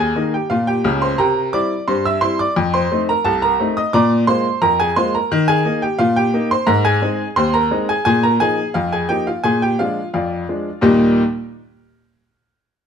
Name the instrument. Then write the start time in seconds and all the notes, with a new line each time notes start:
upright piano
Already playing: D#2
0.00 G#4 G#5
0.16 D#3 A#3 D#4
0.34 G4 G5
0.50 A#2 F4 F5
0.67 G4 G5
0.84 C#2 C#3
1.02 C5 C6
1.18 C3 A#4 G5 A#5
1.53 G3 C4 E4 D5 D6
1.88 G2 C5 C6
2.05 E5 E6
2.21 G3 C4 E4 C5 C6
2.39 D5 D6
2.56 F2
2.74 C5 C6
2.91 A3 C4 D#4
3.09 A#4 A#5
3.25 C2 A4 A5
3.42 A#4 A#5
3.60 A3 C4 D#4
3.77 D#5 D#6
3.93 A#2 D5 A#5 D6
4.27 G#3 A#3 F4 C5 C6
4.62 F2 A#4 A#5
4.80 G#4 G#5
4.96 G#3 A#3 F4 C5 C6
5.15 A#4 A#5
5.32 D#3
5.48 G#4 G#5
5.65 A#3 D#4
5.82 G4 G5
5.99 A#2 F4 F5
6.16 G4 G5
6.34 A#3 D#4
6.51 C5 C6
6.67 G#2 A#4 A#5
6.85 G#4 G#5
7.02 G#3 C4 D#4
7.36 D#2 C5 C6
7.54 A#4 A#5
7.71 G#3 C4 D#4
7.89 G#4 G#5
8.05 A#2 G#4 G#5
8.23 A#4 A#5
8.40 F3 A#3 D#4 G#4 G#5
8.74 F2 F4 F5
8.93 G#4 G#5
9.09 F3 A#3 D#4 G4 G5
9.27 F4 F5
9.44 A#2 G#4 G#5
9.62 G4 G5
9.79 F3 G#3 D4 F4 F5
10.14 F2 F4 D5 F5
10.49 F3 G#3 D4
10.81 D#2 A#2 G3 A#3 D#4 G4 G5